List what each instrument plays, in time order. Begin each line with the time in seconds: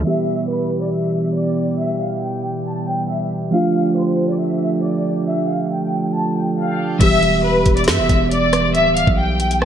0.03 pipe organ B2 E3 G3 G4, synth keys E3 G3 B3, violin section E5
0.07 synth keys G4
0.49 violin section B4
0.81 violin section D5
0.92 violin section E5
1.35 violin section D5
1.79 violin section E5
2.01 violin section F5
2.22 violin section G5
2.66 violin section A5
2.88 violin section G5
3.09 violin section E5
3.51 pipe organ D3 F3 A3, synth keys F3 A3 D4, violin section F5
3.55 synth keys F4
3.96 violin section C5
4.29 violin section D5
4.40 violin section E5
4.83 violin section D5
5.27 violin section E5
5.49 violin section F5
5.70 violin section G5
6.14 violin section A5
6.36 violin section G5
6.57 violin section F5
6.99 808-style bass E1, synth keys E3 G3 B3 G4, violin section E5, kick, closed hi-hat, crash
7.22 808-style bass E1, closed hi-hat
7.44 violin section B4
7.66 808-style bass E1, kick, closed hi-hat
7.77 violin section D5, closed hi-hat
7.84 808-style bass G2, violin section E5, snare, closed hi-hat
7.91 closed hi-hat
7.99 808-style bass E1
8.09 808-style bass E1, kick, closed hi-hat
8.31 violin section D5, closed hi-hat
8.53 cross-stick, closed hi-hat
8.75 808-style bass D1, violin section E5, closed hi-hat
8.96 violin section F5, closed hi-hat
9.07 808-style bass B1, kick
9.18 violin section G5
9.40 closed hi-hat
9.51 closed hi-hat
9.62 violin section A5, cross-stick